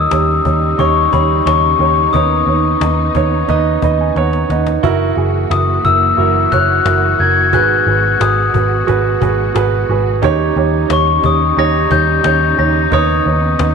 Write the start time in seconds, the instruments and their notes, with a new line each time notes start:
Already playing: string section C#3 G3 D#4, grand piano D#3 D#4 G4 A#4 C#5, glockenspiel D#6
0.11 picked electric bass D#2, grand piano D#4 G4 C#5, cajon slap
0.45 picked electric bass D#2, grand piano D#4 G4 C#5, cajon bass
0.78 picked electric bass D#2, grand piano D#4 G4 C#5, glockenspiel C#6, cajon bass, cajon slap
1.12 picked electric bass D#2, grand piano D#4 G4 C#5, glockenspiel B5, cajon bass
1.45 picked electric bass D#2, grand piano D#4 G4 C#5, glockenspiel C#6, cajon slap
1.64 cajon slap
1.79 picked electric bass D#2, grand piano D#4 G4 C#5, glockenspiel C#6, cajon slap
2.13 picked electric bass D#2, grand piano D#3 D#4 B4 C#5, string section B3, glockenspiel D#6, cajon bass
2.46 picked electric bass D#2, grand piano D#4 B4 C#5, cajon slap
2.81 picked electric bass D#2, grand piano D#4 B4 D#5, cajon slap
3.15 picked electric bass D#2, grand piano D#4 B4 C#5, cajon bass
3.48 picked electric bass D#2, grand piano D#4 B4 D#5, cajon bass, cajon slap
3.82 picked electric bass D#2, grand piano D#4 B4 D#5 B5, cajon bass
4.00 grand piano G#5, cajon slap
4.15 picked electric bass D#2, grand piano D#4 B4 C#5 F#5, cajon slap
4.33 cajon slap
4.49 picked electric bass D#2, grand piano D#4 B4 D#5 F#5, cajon slap
4.67 cajon slap
4.83 picked electric bass F#1, string section E3 A#3 F#4, grand piano E4 F#4 A#4, cajon bass
5.16 picked electric bass F#1, grand piano E4 F#4 G#4, cajon slap
5.50 picked electric bass F#1, grand piano E4 F#4 A#4, glockenspiel D#6, cajon slap
5.84 picked electric bass F#1, grand piano E4 F#4 A#4, glockenspiel E6, cajon bass
6.17 picked electric bass F#1, grand piano E4 F#4 A#4, cajon slap
6.51 picked electric bass F#1, grand piano E4 F#4 C#5, glockenspiel F#6, cajon bass
6.85 picked electric bass F#1, grand piano E4 F#4 A#4, cajon slap
7.03 cajon slap
7.19 picked electric bass F#1, grand piano E4 F#4 A#4, glockenspiel G#6, cajon slap
7.52 picked electric bass G#1, grand piano G#2 F#4 G#4 B4, string section B2 G#3, glockenspiel F#6, cajon bass
7.70 cajon slap
7.86 picked electric bass G#1, grand piano F#4 G#4 B4, cajon slap
8.20 picked electric bass G#1, grand piano F#4 G#4 B4, glockenspiel D#6, cajon slap
8.54 picked electric bass G#1, grand piano F#4 G#4 B4, cajon bass
8.87 picked electric bass G#1, grand piano F#4 G#4 B4, cajon bass, cajon slap
9.21 picked electric bass G#1, grand piano F#4 G#4 B4, cajon bass
9.55 picked electric bass G#1, grand piano F#4 G#4 B4, cajon slap
9.72 cajon slap
9.89 picked electric bass G#1, grand piano F#4 G#4 B4
10.22 picked electric bass D#2, string section C#3 G3 D#4, grand piano D#3 D#4 G4 C#5, cajon bass
10.40 cajon slap
10.56 picked electric bass D#2, grand piano D#4 G4 C#5
10.89 picked electric bass D#2, grand piano D#4 G4 C#5, cajon slap
10.93 glockenspiel C#6
11.23 picked electric bass D#2, grand piano D#4 G4 C#5, glockenspiel D#6, cajon bass
11.56 picked electric bass D#2, grand piano D#4 G4 C#5, glockenspiel A#6, cajon slap
11.90 picked electric bass D#2, grand piano D#4 G4 C#5, glockenspiel G6, cajon bass
12.23 picked electric bass D#2, grand piano D#4 G4 C#5, glockenspiel G6, cajon slap
12.41 cajon slap
12.57 picked electric bass D#2, grand piano D#4 G4 C#5, glockenspiel A#6
12.91 picked electric bass D#2, grand piano D#3 D#4 B4 C#5, string section B3, glockenspiel D#6, cajon bass
13.08 cajon slap
13.25 picked electric bass D#2, grand piano D#4 B4 C#5, cajon slap
13.59 picked electric bass D#2, grand piano D#4 B4 D#5, cajon slap